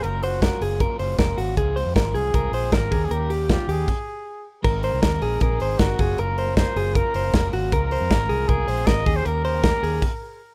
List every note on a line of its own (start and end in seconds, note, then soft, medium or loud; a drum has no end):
0.00 0.21 F#3 medium
0.00 0.22 A#3 medium
0.00 0.24 C#4 medium
0.00 0.25 F4 medium
0.00 0.25 A#4 medium
0.00 0.23 A#4 medium
0.00 closed hi-hat medium
0.04 0.50 F#1 medium
0.22 0.52 F#3 medium
0.22 0.52 A#3 medium
0.22 0.51 C#4 medium
0.22 0.50 F4 medium
0.22 0.62 F#4 medium
0.22 0.42 C5 medium
0.22 open hi-hat medium
0.42 0.62 A#4 medium
0.42 kick loud
0.42 snare loud
0.42 closed hi-hat medium
0.51 0.78 F#3 soft
0.51 0.79 A#3 medium
0.51 0.81 C#4 medium
0.51 0.80 F4 medium
0.61 0.86 F#1 medium
0.61 0.81 G#4 medium
0.61 open hi-hat medium
0.80 0.99 F#3 medium
0.80 1.00 A#3 medium
0.80 1.01 C#4 medium
0.80 1.01 F4 medium
0.80 0.99 A#4 medium
0.80 kick loud
0.80 closed hi-hat medium
0.99 1.16 F#1 medium
0.99 1.29 F#3 medium
0.99 1.29 A#3 medium
0.99 1.29 C#4 medium
0.99 1.27 F4 medium
0.99 1.19 C5 medium
0.99 open hi-hat medium
1.18 1.35 F1 medium
1.18 1.38 A#4 medium
1.18 kick loud
1.18 snare loud
1.18 closed hi-hat medium
1.28 1.57 A#3 soft
1.28 1.58 C#4 medium
1.28 1.57 F4 medium
1.38 1.55 G#1 medium
1.38 1.57 F#4 medium
1.38 open hi-hat medium
1.57 1.82 C#2 loud
1.57 1.74 F3 medium
1.57 1.76 G#3 medium
1.57 1.77 C4 medium
1.57 1.78 F4 medium
1.57 1.77 G#4 medium
1.57 kick loud
1.57 closed hi-hat medium
1.76 2.05 F3 medium
1.76 2.05 G#3 medium
1.76 2.04 C4 medium
1.76 2.04 F4 medium
1.76 1.95 C5 medium
1.76 open hi-hat medium
1.86 1.94 F2 medium
1.96 2.12 G#1 medium
1.96 2.15 A#4 medium
1.96 kick medium
1.96 snare loud
1.96 closed hi-hat medium
2.05 2.35 C#3 medium
2.05 2.32 F3 medium
2.05 2.34 G#3 medium
2.05 2.34 C4 medium
2.05 2.34 F4 medium
2.13 2.30 C2 medium
2.13 2.34 G#4 medium
2.13 2.76 G#4 medium
2.13 open hi-hat medium
2.33 2.51 C2 medium
2.33 2.51 F3 medium
2.33 2.53 G#3 medium
2.33 2.53 C4 medium
2.33 2.55 F4 medium
2.33 2.54 A#4 medium
2.33 kick medium
2.33 closed hi-hat medium
2.52 2.69 A#1 medium
2.52 2.82 F3 medium
2.52 2.82 G#3 soft
2.52 2.82 C4 medium
2.52 2.72 C5 medium
2.52 open hi-hat medium
2.56 2.80 F4 medium
2.72 2.89 G#1 medium
2.72 2.92 A#4 medium
2.72 3.06 A#4 loud
2.72 kick medium
2.72 snare loud
2.72 closed hi-hat medium
2.81 2.91 G#3 soft
2.81 2.92 C4 soft
2.81 2.92 F4 soft
2.91 3.08 D#2 medium
2.91 3.28 D#3 medium
2.91 3.29 A#3 medium
2.91 3.30 C#4 medium
2.91 3.31 G4 medium
2.91 3.11 G#4 medium
2.91 kick loud
2.91 open hi-hat medium
3.05 3.15 G#4 medium
3.11 3.57 D#2 loud
3.11 3.50 G4 medium
3.11 3.30 A#4 medium
3.11 closed hi-hat medium
3.29 3.58 D#3 soft
3.29 3.59 A#3 medium
3.29 3.58 C#4 medium
3.29 3.49 G4 medium
3.29 3.57 G4 medium
3.29 open hi-hat medium
3.49 3.68 F4 medium
3.49 3.73 G4 medium
3.49 kick loud
3.49 snare loud
3.49 closed hi-hat medium
3.58 3.89 D#3 medium
3.58 3.89 A#3 medium
3.58 3.88 C#4 medium
3.58 3.88 G4 medium
3.68 3.84 D#2 medium
3.68 3.88 G4 medium
3.68 4.47 G#4 medium
3.68 open hi-hat medium
3.88 kick medium
3.88 crash medium
4.63 4.89 G#1 loud
4.63 4.93 G#3 medium
4.63 4.93 C4 medium
4.63 4.94 D#4 medium
4.63 5.43 A#4 medium
4.63 4.84 A#4 medium
4.63 4.91 A#4 medium
4.63 kick loud
4.63 crash medium
4.83 5.02 C5 medium
4.83 open hi-hat medium
4.92 5.01 C2 medium
4.92 5.13 C4 soft
4.92 5.12 D#4 medium
4.92 5.11 A#4 soft
5.02 5.19 D#2 medium
5.02 5.22 A#4 medium
5.02 kick medium
5.02 snare loud
5.02 closed hi-hat medium
5.12 5.52 G#3 medium
5.12 5.52 C4 medium
5.12 5.51 D#4 medium
5.12 5.50 A#4 medium
5.22 5.39 A#1 medium
5.22 5.41 G#4 medium
5.22 open hi-hat medium
5.41 5.58 A#1 loud
5.41 5.80 G#4 medium
5.41 5.61 A#4 medium
5.41 kick loud
5.41 closed hi-hat medium
5.51 5.71 C4 soft
5.51 5.70 D#4 soft
5.51 5.68 A#4 medium
5.60 5.77 G#1 medium
5.60 5.80 C5 medium
5.60 open hi-hat medium
5.69 5.89 C4 soft
5.69 5.88 D#4 soft
5.69 5.87 A#4 medium
5.79 5.96 G1 medium
5.79 6.21 F#4 medium
5.79 6.00 A#4 medium
5.79 kick loud
5.79 snare loud
5.79 closed hi-hat medium
5.88 5.99 G#3 medium
5.88 5.99 C4 medium
5.88 5.99 D#4 medium
5.88 5.99 A#4 medium
5.99 6.15 F#1 medium
5.99 6.47 F#3 medium
5.99 6.47 A#3 medium
5.99 6.48 C#4 medium
5.99 6.47 F4 medium
5.99 6.19 G#4 medium
5.99 kick loud
5.99 open hi-hat medium
6.18 6.64 F#1 loud
6.18 6.38 A#4 medium
6.18 6.57 A#4 medium
6.18 closed hi-hat medium
6.38 6.57 C5 medium
6.38 open hi-hat medium
6.47 6.67 A#3 soft
6.47 6.66 C#4 medium
6.47 6.65 F4 soft
6.57 6.76 A#4 medium
6.57 6.96 C5 medium
6.57 kick loud
6.57 snare loud
6.57 closed hi-hat medium
6.66 7.06 F#3 medium
6.66 7.06 A#3 medium
6.66 7.06 C#4 medium
6.66 7.04 F4 medium
6.76 7.00 F#1 loud
6.76 6.96 G#4 medium
6.76 open hi-hat medium
6.95 7.53 A#4 loud
6.95 7.15 A#4 medium
6.95 kick loud
6.95 closed hi-hat medium
7.05 7.25 A#3 soft
7.05 7.25 C#4 medium
7.05 7.23 F4 medium
7.14 7.31 F#1 medium
7.14 7.35 C5 medium
7.14 open hi-hat medium
7.24 7.44 A#3 soft
7.24 7.43 C#4 medium
7.24 7.41 F4 medium
7.33 7.50 F1 medium
7.33 7.53 A#4 medium
7.33 kick loud
7.33 snare loud
7.33 closed hi-hat medium
7.43 7.72 F#3 medium
7.43 7.73 A#3 medium
7.43 7.72 C#4 medium
7.43 7.72 F4 medium
7.53 7.69 G#1 medium
7.53 7.72 F#4 medium
7.53 open hi-hat medium
7.72 7.96 C#2 loud
7.72 8.01 F3 medium
7.72 8.01 G#3 medium
7.72 8.01 C4 medium
7.72 7.99 F4 medium
7.72 7.92 A#4 medium
7.72 8.50 A#4 loud
7.72 kick loud
7.72 closed hi-hat medium
7.91 8.11 C5 medium
7.91 open hi-hat medium
8.00 8.09 F2 medium
8.00 8.20 G#3 soft
8.00 8.19 C4 soft
8.00 8.18 F4 medium
8.10 8.26 G#1 medium
8.10 8.30 A#4 medium
8.10 kick loud
8.10 snare loud
8.10 closed hi-hat medium
8.19 8.59 C#3 medium
8.19 8.59 F3 medium
8.19 8.59 G#3 medium
8.19 8.59 C4 medium
8.19 8.57 F4 medium
8.29 8.46 C2 medium
8.29 8.48 G#4 medium
8.29 open hi-hat medium
8.48 8.65 C2 loud
8.48 8.89 G#4 loud
8.48 8.68 A#4 medium
8.48 kick loud
8.48 closed hi-hat medium
8.58 8.79 G#3 soft
8.58 8.79 C4 soft
8.58 8.77 F4 medium
8.68 8.84 A#1 loud
8.68 8.87 C5 medium
8.68 open hi-hat medium
8.78 8.97 G#3 soft
8.78 8.96 C4 medium
8.78 8.96 F4 medium
8.87 9.03 G#1 medium
8.87 9.06 A#4 medium
8.87 9.18 D#5 loud
8.87 kick loud
8.87 snare loud
8.87 closed hi-hat medium
8.97 9.08 C#3 medium
8.97 9.05 F3 medium
8.97 9.07 G#3 medium
8.97 9.06 C4 medium
8.97 9.06 F4 medium
9.06 9.22 D#2 loud
9.06 9.60 D#3 medium
9.06 9.58 A#3 medium
9.06 9.55 C#4 medium
9.06 9.53 G4 medium
9.06 9.25 G#4 medium
9.06 kick loud
9.06 open hi-hat medium
9.17 9.26 C5 medium
9.25 9.71 D#2 medium
9.25 9.44 A#4 medium
9.25 10.37 A#4 loud
9.25 closed hi-hat medium
9.45 9.64 C5 medium
9.45 open hi-hat medium
9.55 9.74 A#3 soft
9.55 9.74 C#4 medium
9.55 9.72 G4 soft
9.64 9.83 A#4 medium
9.64 kick loud
9.64 snare loud
9.64 closed hi-hat medium
9.73 10.04 D#3 medium
9.73 10.03 A#3 medium
9.73 10.03 C#4 medium
9.73 10.02 G4 medium
9.83 9.99 D#2 loud
9.83 10.02 G#4 medium
9.83 open hi-hat medium
10.02 kick loud
10.02 crash medium